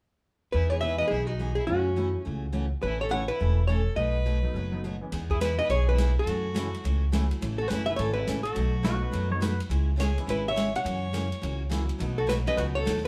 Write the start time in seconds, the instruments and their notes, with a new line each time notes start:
0.52 upright bass E2, steel-string acoustic guitar E3 B3 D#4 G#4, fiddle E4, hollow-body jazz guitar B4
0.70 upright piano E3 G#3 B3 D#4, fiddle G#4, hollow-body jazz guitar C#5
0.81 steel-string acoustic guitar E3 B3 D#4 G#4, fiddle B4, hollow-body jazz guitar E5
0.98 upright piano E3 G#3 B3 D#4, fiddle B4, hollow-body jazz guitar D#5
1.08 upright bass B1, steel-string acoustic guitar E3, fiddle E4, hollow-body jazz guitar G#4
1.12 steel-string acoustic guitar B3 D#4 G#4
1.27 fiddle D#4, hollow-body jazz guitar F#4
1.39 steel-string acoustic guitar E3 B3 D#4 G#4
1.55 fiddle E4, hollow-body jazz guitar G#4
1.67 upright bass F#2, steel-string acoustic guitar C#3 E3 A3 C#4 F#4, fiddle C#4, hollow-body jazz guitar F#4
1.96 steel-string acoustic guitar C#3 E3 A3 C#4 F#4, upright piano F#3 A3 C#4 E4
2.25 upright bass C#2, steel-string acoustic guitar C#3 E3 A3 C#4 F#4
2.52 steel-string acoustic guitar C#3 E3 A3 C#4 F#4
2.82 upright bass A1, steel-string acoustic guitar C#3 E3 A3 C#4 A4, fiddle E4, hollow-body jazz guitar B4
3.01 fiddle A4, hollow-body jazz guitar C#5
3.09 steel-string acoustic guitar C#3 E3 A3 C#4 A4, upright piano E3 A3 C#4 E4, fiddle C#5, hollow-body jazz guitar F#5
3.28 fiddle E4, hollow-body jazz guitar B4
3.39 upright bass E1, steel-string acoustic guitar C#3 E3 A3 C#4 A4
3.67 steel-string acoustic guitar C#3 E3 A3 C#4 A4, fiddle A4, hollow-body jazz guitar C#5
3.96 upright bass B1, steel-string acoustic guitar B2 F#3 A3 D#4 F#4, fiddle B4, hollow-body jazz guitar D#5
4.25 steel-string acoustic guitar B2 F#3 A3 D#4 F#4
4.42 upright piano F#3 A3 B3 D#4
4.54 upright bass F#1, steel-string acoustic guitar B2 F#3 A3 D#4 F#4
4.72 upright piano F#3 A3 B3 D#4
4.84 steel-string acoustic guitar B2 F#3 A3 D#4 F#4
5.01 upright piano E3 G#3 B3 C#4
5.12 upright bass E2, steel-string acoustic guitar E3 B3 D#4 G#4, snare, ride
5.30 fiddle E4, hollow-body jazz guitar G#4, kick
5.40 steel-string acoustic guitar E3 B3 D#4 G#4, fiddle E4, hollow-body jazz guitar B4, snare, hi-hat pedal, ride
5.58 upright piano E3 G#3 B3 D#4, fiddle B4, hollow-body jazz guitar D#5
5.69 upright bass B1, steel-string acoustic guitar E3 B3 D#4 G#4, fiddle G#4, hollow-body jazz guitar C#5, ride
5.87 upright piano E3 G#3 B3 D#4, hollow-body jazz guitar B4
5.91 fiddle E4
5.98 steel-string acoustic guitar E3 B3 D#4 G#4, snare, hi-hat pedal, ride
6.19 fiddle F#4, hollow-body jazz guitar A4
6.26 upright bass F#2, steel-string acoustic guitar C#3 E3 A3 C#4 F#4, ride
6.54 steel-string acoustic guitar C#3 E3 A3 C#4 F#4, upright piano F#3 A3 C#4 E4, snare, hi-hat pedal, ride
6.74 ride
6.84 upright bass C#2, steel-string acoustic guitar C#3 E3 A3 C#4 F#4, ride
7.12 steel-string acoustic guitar C#3 E3 A3 C#4 F#4, upright piano F#3 A3 C#4 E4, snare, hi-hat pedal, ride
7.31 ride
7.41 upright bass A1, steel-string acoustic guitar C#3 E3 A3 C#4 A4, ride
7.58 fiddle F#4, hollow-body jazz guitar A4
7.68 upright bass F#1, steel-string acoustic guitar C#3 E3 A3 C#4 A4, fiddle E4, hollow-body jazz guitar B4, snare, hi-hat pedal, ride
7.86 upright piano E3 A3 C#4 E4, fiddle B4, hollow-body jazz guitar E5
7.96 upright bass G#1, steel-string acoustic guitar C#3 E3 A3 C#4 A4, fiddle A4, hollow-body jazz guitar C#5, ride
8.14 fiddle E4, hollow-body jazz guitar B4
8.27 upright bass A1, steel-string acoustic guitar C#3 E3 A3 C#4 A4, snare, hi-hat pedal, ride
8.43 fiddle F#4, hollow-body jazz guitar A4, ride
8.55 upright bass B1, steel-string acoustic guitar B2 F#3 A3 D#4 F#4, ride
8.83 steel-string acoustic guitar B2 F#3 A3 D#4 F#4, upright piano F#3 A3 B3 D#4, pedal steel guitar F#4, snare, hi-hat pedal, ride
9.03 pedal steel guitar B4
9.11 upright bass F#2, steel-string acoustic guitar B2 F#3 A3 D#4 F#4, ride
9.30 upright piano F#3 A3 B3 D#4, pedal steel guitar C#5
9.40 steel-string acoustic guitar B2 F#3 A3 D#4 F#4, pedal steel guitar B4, snare, hi-hat pedal, ride
9.60 ride
9.69 upright bass C#2, steel-string acoustic guitar C#3 G#3 C#4 E4 G#4, ride
9.96 steel-string acoustic guitar C#3 G#3 C#4 E4 G#4, fiddle G#4, snare, hi-hat pedal, ride
10.00 hollow-body jazz guitar C#5
10.17 upright piano E3 G#3 C#4 E4, ride
10.27 upright bass G#1, steel-string acoustic guitar C#3 G#3 C#4 E4 G#4, fiddle E4, hollow-body jazz guitar B4, ride
10.48 fiddle C#5, hollow-body jazz guitar E5
10.56 steel-string acoustic guitar C#3 G#3 C#4 E4 G#4, snare, hi-hat pedal, ride
10.75 fiddle C#5, hollow-body jazz guitar F#5, ride
10.84 upright bass F#2, steel-string acoustic guitar C#3 E3 A#3 C#4 F#4, ride
11.13 steel-string acoustic guitar C#3 E3 A#3 C#4 F#4, snare, hi-hat pedal, ride
11.32 ride
11.41 upright bass C#2, steel-string acoustic guitar C#3 E3 A#3 C#4 F#4, ride
11.69 steel-string acoustic guitar C#3 E3 A#3 C#4 F#4, upright piano F#3 A#3 C#4 E4, snare, hi-hat pedal, ride
11.89 ride
11.98 upright bass B1, steel-string acoustic guitar B2 F#3 A3 D#4 F#4, upright piano F#3 A3 B3 D#4, ride
12.18 fiddle F#4, hollow-body jazz guitar A4
12.27 steel-string acoustic guitar B2 F#3 A3 D#4 F#4, fiddle F#4, hollow-body jazz guitar B4, snare, hi-hat pedal, ride
12.46 upright piano F#3 A3 B3 C#4, fiddle B4, hollow-body jazz guitar D#5, ride
12.57 upright bass C#2, steel-string acoustic guitar B2 F#3 A3 D#4 F#4, fiddle F#4, hollow-body jazz guitar B4, ride
12.75 fiddle A4, hollow-body jazz guitar C#5
12.85 upright bass D#2, steel-string acoustic guitar B2 F#3 A3 D#4 F#4, snare, hi-hat pedal, ride
12.97 snare